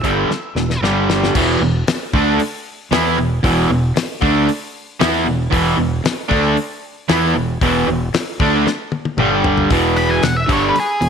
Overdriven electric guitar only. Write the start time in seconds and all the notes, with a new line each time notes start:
0.03 G2 D3 G3
0.30 muted overdriven electric guitar stroke
0.57 E2 B2
0.83 G2 D3 G3
1.35 E2 B2 E3
1.62 E2 B2
1.89 muted overdriven electric guitar stroke
2.14 D3 A3 D4
2.41 muted overdriven electric guitar stroke
2.91 E3 B3 E4
3.18 E2 B2
3.43 E2 B2 E3
3.70 E2 B2
3.96 muted overdriven electric guitar stroke
4.21 D3 A3 D4
4.47 muted overdriven electric guitar stroke
5.00 E3 B3 E4
5.25 E2 B2
5.51 E2 B2 E3
5.77 E2 B2
6.04 muted overdriven electric guitar stroke
6.29 D3 A3 D4
6.57 muted overdriven electric guitar stroke
7.09 E3 B3 E4
7.35 E2 B2
7.62 E2 B2 E3
7.87 E2 B2
8.14 muted overdriven electric guitar stroke
8.40 D3 A3 D4
8.68 muted overdriven electric guitar stroke
9.19 G2 D3 G3
9.71 E2 B2 E3
10.24 E2 B2
10.48 G2 D3 G3
10.74 muted overdriven electric guitar stroke
11.01 E2 B2